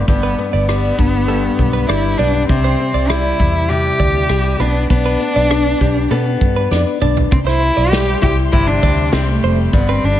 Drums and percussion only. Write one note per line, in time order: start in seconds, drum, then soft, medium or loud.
0.08 kick medium
0.08 shaker medium
0.23 shaker soft
0.54 shaker soft
0.69 cross-stick medium
0.69 shaker medium
0.83 shaker soft
0.99 kick medium
0.99 shaker soft
1.14 shaker soft
1.29 shaker medium
1.43 shaker soft
1.59 kick medium
1.74 shaker soft
1.89 cross-stick medium
1.89 shaker medium
2.05 shaker soft
2.34 shaker soft
2.49 kick medium
2.49 shaker medium
2.65 cross-stick soft
2.65 shaker soft
2.80 shaker soft
2.95 shaker soft
3.09 cross-stick loud
3.09 shaker medium
3.24 shaker soft
3.40 kick medium
3.40 shaker medium
3.54 shaker soft
3.69 shaker medium
3.84 shaker soft
4.00 kick medium
4.15 shaker soft
4.29 cross-stick medium
4.29 shaker medium
4.45 shaker soft
4.75 shaker soft
4.90 kick medium
4.90 shaker medium
5.05 cross-stick soft
5.05 shaker soft
5.36 shaker soft
5.50 cross-stick loud
5.50 shaker medium
5.65 shaker soft
5.81 kick medium
5.81 shaker medium
5.96 shaker soft
6.11 shaker medium
6.25 shaker medium
6.41 kick medium
6.41 shaker medium
6.56 shaker soft
6.72 snare medium
7.02 mid tom medium
7.17 floor tom medium
7.32 kick loud
7.32 shaker medium
7.47 snare soft
7.47 shaker medium
7.63 shaker medium
7.79 shaker soft
7.93 snare loud
7.93 shaker medium
8.07 shaker soft
8.23 kick medium
8.23 shaker medium
8.38 shaker soft
8.53 kick medium
8.53 shaker medium
8.68 shaker medium
8.83 kick medium
8.98 shaker soft
9.13 snare loud
9.13 shaker medium
9.29 shaker medium
9.43 shaker soft
9.58 shaker soft
9.73 kick loud
9.73 shaker medium
9.88 shaker medium
10.03 shaker soft